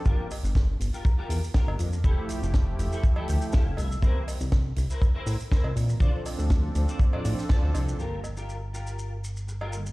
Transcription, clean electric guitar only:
X:1
M:4/4
L:1/16
Q:1/4=121
K:Gdor
V:1 name="Clean electric guitar"
[FGB]2 z4 z [FGB] z [FGB] z2 [FGB]2 z2 | [EGA]2 z4 z [EGA] z [EGA] g2 [EGAf]2 e2 | [EBc]2 z4 z [EBc] z [EBc] z2 [EBc]2 z2 | [Fcd]2 z4 z [Fcd] z [Fcd] z2 [Fcd]2 z2 |
[FGB]2 z [FGB] z2 [FGB]3 z4 [FGB] z2 |]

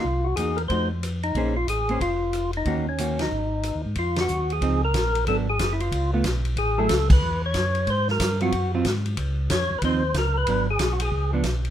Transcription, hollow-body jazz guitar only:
X:1
M:4/4
L:1/8
Q:"Swing" 1/4=184
K:Bbm
V:1 name="Hollow-body jazz guitar"
z2 [B,EG] z [F,=A,EG] z3 | [B,DAc] z2 [B,DAc] z4 | [E,B,DG] z [E,B,DG] z4 z | [K:Abmix] z4 [F,CE] z3 |
[G,_C=D] z4 [=A,CF] z2 | z [G,=A,_F_A] z6 | z3 [G,CF] z [G,CF] z2 | z4 [F,CE] z3 |
[G,_C=D] z4 [F,CD] z2 |]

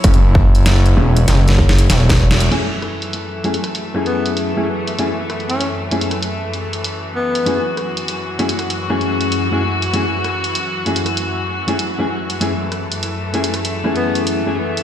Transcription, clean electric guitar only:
X:1
M:4/4
L:1/16
Q:"Swing 16ths" 1/4=97
K:F#m
V:1 name="Clean electric guitar"
[A,CEG] z4 z [A,CEG] z8 z | [F,,A,CEG] z4 z [F,,A,CEG] z2 [F,,A,CEG]4 [F,,A,CEG] z2 | [F,,A,CEG] z4 z [F,,A,CEG] z8 z | [F,,A,CEG] z4 z [F,,A,CEG] z2 [F,,A,CEG]4 [F,,A,CEG] z2 |
[F,,A,CEG] z4 z [F,,A,CEG] z4 [F,,A,CEG] z [F,,A,CEG] z2 | [F,,A,CEG] z4 z [F,,A,CEG] z2 [F,,A,CEG]4 [F,,A,CEG] z2 |]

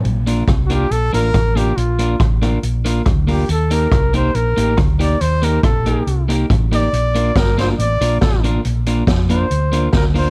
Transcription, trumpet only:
X:1
M:4/4
L:1/16
Q:1/4=140
K:Bb
V:1 name="Trumpet"
z4 z3/2 _G/2 =G2 A2 B4 G2 | F4 z8 z2 G2 | A2 B4 c2 B4 z2 d2 | c2 B2 A6 z4 d2- |
d4 B2 c2 d4 A2 z2 | z6 c6 B2 c2 |]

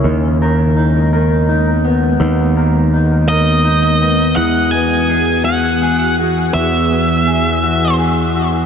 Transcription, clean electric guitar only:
X:1
M:6/8
L:1/8
Q:3/8=55
K:Elyd
V:1 name="Clean electric guitar"
D, A D A D B, | D, A D A D B, | E, B, G F G F | E, B, G F G F |]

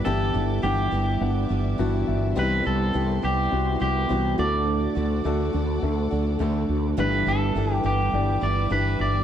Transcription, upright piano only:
X:1
M:4/4
L:1/16
Q:1/4=104
K:G
V:1 name="Upright piano"
[B,DEG]3 z [B,DEf]3 z [B,DEf]3 z [B,DEF]3 z | [B,C_E=EG]3 z [B,CEG]3 z [B,CEF]3 z [B,CEF]2 [A,DFA]2- | [A,DFA]2 z2 [A,DFA]3 z [A,DFA]3 z [A,DFA]3 z | [DEGB]3 z [DEGA]3 z [DEGd]3 z [DEGB]3 z |]
V:2 name="Upright piano" clef=bass
[G,,G,]6 z6 a g e2 | G,,6 z8 A,,2- | A,,4 z12 | [G,,D,]6 z8 z2 |]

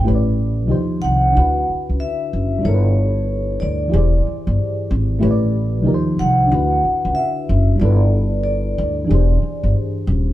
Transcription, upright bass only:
X:1
M:4/4
L:1/16
Q:"Swing 16ths" 1/4=93
K:D
V:1 name="Upright bass" clef=bass
A,,,4 _E,,2 =C,,2 D,,2 z ^C,, z2 F,,,2 | G,,,6 D,,2 E,,,2 z G,,, z2 ^G,,,2 | A,,,4 _E,,2 =C,,2 D,,2 z ^C,, z2 F,,,2 | G,,,6 D,,2 E,,,2 z G,,, z2 _E,,,2 |]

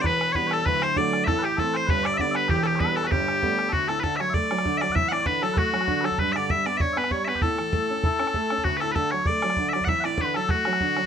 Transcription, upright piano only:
X:1
M:4/4
L:1/8
Q:"Swing" 1/4=195
K:G
V:1 name="Upright piano" clef=bass
[E,,,E,,]2 [E,G,B,]2 [D,,,D,,]2 [D,F,A,]2 | [A,,,A,,]2 [E,A,C]2 [G,,,G,,]2 [D,G,B,]2 | [E,,,E,,]2 [E,G,B,]2 [G,,,G,,]2 [G,A,B,]2 | [K:D] D,, A,, D, F, A, F, D, F, |
A,,, A,, D, F, A, F, D, F, | G,, D, G, B, D B, G, B, | A,, E, A, C E C A, C | D,, A,, D, F, A, F, D, F, |
A,,, A,, D, F, A, F, D, F, |]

